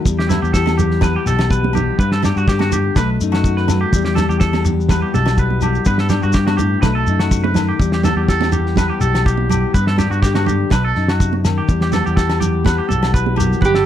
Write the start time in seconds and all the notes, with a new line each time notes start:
0.05 E2 G3, kick, shekere
0.19 G4, snare
0.29 B3 E4, snare, low conga, low agogo, shekere
0.42 E2 G4, shekere
0.53 E3 G4 A4, kick, snare, shekere
0.66 snare, high conga, low agogo
0.78 G4, low conga, shekere
0.91 snare
1.01 B3 B4, kick, snare, low conga, low agogo, shekere
1.16 G4
1.26 B1 B2 G4 A4, snare, shekere
1.39 snare, low agogo
1.50 B4, kick, shekere
1.64 high conga
1.73 B3 G4, low conga, low agogo, shekere
1.98 G2 B3 B4, kick, shekere
2.12 A4, snare
2.22 D4 G4, snare, low conga, low agogo, shekere
2.36 G2 F#4, shekere
2.48 D3 G4, kick, snare, shekere
2.59 F#4, snare, high conga, low agogo
2.72 G4, low conga, shekere
2.96 B1 B2 A3 B4, kick, snare, low conga, low agogo, shekere
3.21 F#2 D#4, shekere
3.32 F#4, snare, low agogo
3.44 D#3 F#4, kick, shekere
3.57 B4, snare
3.68 snare, low conga, low agogo, shekere
3.81 G4
3.92 E2 G3, kick, shekere
4.05 G4, snare
4.15 A4, snare, low conga, low agogo, shekere
4.20 B3
4.29 E2 G4, shekere
4.40 E3 A4, muted steel-string acoustic guitar stroke, kick, snare, shekere
4.53 G4, snare, high conga, low agogo
4.65 muted clean electric guitar stroke, low conga, shekere
4.81 shekere
4.89 B3 B4, kick, snare, high conga, low conga, low agogo, shekere
5.02 G4
5.14 B1 B2 A4, muted steel-string acoustic guitar stroke, snare, high conga, shekere
5.26 snare, low agogo, shekere
5.38 E2 B4, kick, shekere
5.50 high conga
5.61 F#2 G4, low conga, low agogo, shekere
5.75 shekere
5.85 G2 B3 B4, kick, shekere
5.98 A4, snare
6.09 D4 G4, snare, low conga, low agogo, shekere
6.23 G2 F#4, shekere
6.33 G2 G4, kick, snare, shekere
6.47 F#4, snare, high conga, low agogo
6.57 A2 G4, low conga, shekere
6.82 B1 B2 A3 B4, kick, snare, low conga, low agogo, shekere
6.95 A4
7.07 F#2 D#4, shekere
7.19 F#4, snare, low agogo
7.31 C3, kick, shekere
7.44 B4, high conga
7.54 D#3, snare, low conga, low agogo, shekere
7.69 G4
7.79 E2 G3, kick, shekere
7.92 G4, snare
8.04 B3 A4, snare, low conga, low agogo, shekere
8.16 E2 G4
8.28 E3 G4 A4, kick, snare, shekere
8.41 snare, high conga, low agogo
8.52 G4, low conga, shekere
8.66 snare
8.76 B3 B4, kick, snare, low conga, low agogo, shekere
8.90 G4
9.00 B1 B2 G4 A4, shekere
9.15 snare, low agogo
9.26 G4, kick, shekere
9.37 high conga
9.50 B3 G4, low conga, low agogo, shekere
9.74 G2 B3 B4, kick, shekere
9.87 A4, snare
9.98 D4 G4, snare, low conga, low agogo, shekere
10.10 G2 F#4, shekere
10.22 D3 G4, kick, snare, shekere
10.35 F#4, snare, high conga, low agogo
10.46 G4, low conga, shekere
10.70 B1 B2 B4, muted steel-string acoustic guitar stroke, kick, snare, low conga, low agogo, shekere
10.85 A4
10.95 F#2 D#4, snare
11.08 F#4, snare, low agogo
11.20 C3, kick, shekere
11.33 high conga
11.45 D#3, snare, low agogo, shekere
11.58 G4
11.69 E2 G3, kick, shekere
11.81 G4, snare
11.92 B3 A4, snare, low conga, low agogo, shekere
12.06 E2 G4, shekere
12.16 E3 G4 A4, kick, snare, shekere
12.30 snare, low agogo
12.40 G4, low conga, shekere
12.65 B3 B4, kick, snare, high conga, low conga, low agogo, shekere
12.78 G4
12.89 B1 B2 A4, high conga, shekere
13.03 snare, low agogo, shekere
13.14 E2 B4, kick, shekere
13.26 high conga
13.36 F#2 G4, low conga, low agogo
13.40 shekere
13.53 shekere
13.61 G1 G2 B4, kick, low conga, shekere
13.66 G4
13.75 A4, snare